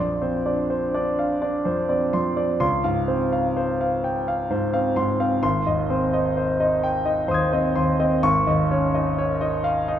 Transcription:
0.00 2.57 A#1 soft
0.00 0.37 F2 soft
0.00 0.37 D5 soft
0.00 0.13 C6 medium
0.21 0.61 C4 soft
0.21 0.61 C5 soft
0.46 0.85 D4 soft
0.46 0.85 D5 soft
0.70 1.09 C5 soft
0.94 1.33 D4 soft
0.94 1.33 D5 soft
1.19 1.57 F5 soft
1.42 1.80 D4 soft
1.42 1.80 D5 soft
1.65 2.03 F2 soft
1.65 2.03 C5 soft
1.89 2.27 C4 soft
1.89 2.27 D5 soft
2.13 2.51 F2 soft
2.13 2.51 C6 soft
2.37 2.61 C4 soft
2.37 2.60 D5 soft
2.60 5.39 C#2 medium
2.60 2.98 C6 medium
2.84 3.23 G#2 soft
2.84 3.22 F5 soft
3.08 3.47 C4 soft
3.08 3.47 C5 soft
3.32 3.71 F5 soft
3.57 3.95 C5 soft
3.81 4.18 F5 soft
4.04 4.42 G5 soft
4.28 4.65 F5 soft
4.50 4.87 G#2 soft
4.50 4.88 C5 soft
4.73 5.11 C4 soft
4.73 5.10 F5 soft
4.96 5.34 G#2 soft
4.96 5.34 C6 medium
5.20 5.43 C4 soft
5.20 5.43 F5 soft
5.43 8.19 G#1 medium
5.43 5.81 C6 medium
5.67 6.04 D#2 soft
5.67 6.04 D#5 soft
5.90 6.28 C4 soft
5.90 6.27 C5 soft
6.13 6.51 D#4 soft
6.13 6.51 D#5 soft
6.37 6.74 C5 soft
6.60 6.97 D#4 soft
6.60 6.97 D#5 medium
6.84 7.20 G5 medium
7.05 7.43 D#4 soft
7.05 7.43 D#5 medium
7.28 7.66 D#2 soft
7.28 7.66 C5 soft
7.28 7.74 C6 soft
7.28 8.21 D#6 soft
7.34 8.22 G#6 soft
7.53 7.91 C4 soft
7.53 7.90 D#5 medium
7.76 8.14 D#2 soft
7.76 8.14 C6 medium
8.00 8.24 C4 soft
8.00 8.23 D#5 medium
8.23 9.99 G#1 medium
8.23 8.61 C#6 medium
8.47 8.85 D#2 soft
8.47 8.85 D#5 soft
8.71 9.08 C#4 soft
8.71 9.08 C#5 soft
8.94 9.32 D#4 soft
8.94 9.31 D#5 soft
9.18 9.55 C#5 medium
9.41 9.78 D#4 soft
9.41 9.78 D#5 medium
9.64 9.99 F5 medium
9.88 9.99 D#4 soft
9.88 9.99 D#5 medium

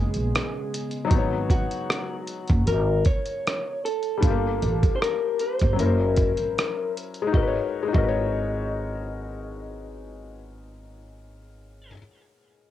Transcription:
0.00 1.06 C#3 medium
0.00 1.04 G#3 medium
0.00 1.06 G#3 medium
0.00 1.06 B3 medium
0.00 1.05 D#4 medium
0.00 1.06 F#4 medium
0.00 1.07 G#4 medium
0.00 1.08 A#4 medium
0.00 1.09 B4 medium
0.00 1.10 D#5 medium
0.14 0.31 A#1 medium
0.14 closed hi-hat medium
0.35 cross-stick medium
0.35 closed hi-hat medium
0.74 closed hi-hat medium
0.91 closed hi-hat soft
1.05 4.15 F#3 medium
1.05 4.17 D#4 medium
1.10 1.64 G#1 medium
1.10 4.18 F#4 medium
1.10 kick loud
1.10 closed hi-hat medium
1.15 4.20 B3 medium
1.15 4.22 C#5 medium
1.50 2.67 F#4 medium
1.50 kick medium
1.50 closed hi-hat medium
1.71 closed hi-hat soft
1.90 cross-stick loud
1.90 closed hi-hat medium
2.27 closed hi-hat medium
2.48 2.65 F#1 loud
2.48 kick medium
2.48 closed hi-hat soft
2.67 3.01 G#1 loud
2.67 3.03 A#4 medium
2.67 closed hi-hat medium
3.05 3.85 C#5 loud
3.05 kick loud
3.05 closed hi-hat medium
3.26 closed hi-hat soft
3.47 cross-stick medium
3.47 closed hi-hat medium
3.85 4.95 A4 medium
3.85 closed hi-hat medium
4.03 closed hi-hat soft
4.17 5.73 G3 medium
4.17 5.74 D4 soft
4.23 4.57 G1 medium
4.23 5.76 F4 medium
4.23 kick loud
4.23 closed hi-hat medium
4.27 5.79 A#3 medium
4.27 5.77 G4 medium
4.62 4.81 A1 medium
4.62 closed hi-hat medium
4.83 kick medium
4.83 closed hi-hat soft
4.96 5.01 C5 medium
5.02 5.40 A#4 medium
5.02 cross-stick medium
5.02 closed hi-hat medium
5.39 5.79 C5 medium
5.39 closed hi-hat medium
5.59 5.77 G1 loud
5.59 kick medium
5.59 closed hi-hat soft
5.73 7.28 F#3 medium
5.73 7.30 C#4 medium
5.79 6.32 F#1 medium
5.79 7.32 E4 medium
5.79 6.92 A#4 medium
5.79 7.33 A#4 medium
5.79 closed hi-hat medium
5.86 7.35 C5 medium
6.16 kick medium
6.16 closed hi-hat medium
6.37 6.54 G#1 medium
6.37 closed hi-hat soft
6.58 cross-stick medium
6.58 closed hi-hat medium
6.97 closed hi-hat medium
7.14 closed hi-hat soft
7.22 7.51 G#3 medium
7.27 7.54 D#4 medium
7.32 7.57 G#1 medium
7.32 7.56 F#4 medium
7.32 7.58 D#5 medium
7.32 kick loud
7.37 7.59 A#4 medium
7.43 7.62 B4 medium
7.48 7.65 C#5 medium
7.83 11.86 G#3 medium
7.88 11.88 D#4 medium
7.93 11.92 G#1 medium
7.93 11.91 F#4 medium
7.93 11.92 D#5 medium
7.93 kick medium
7.98 11.93 A#4 medium
8.03 11.96 B4 medium
8.08 11.99 C#5 medium

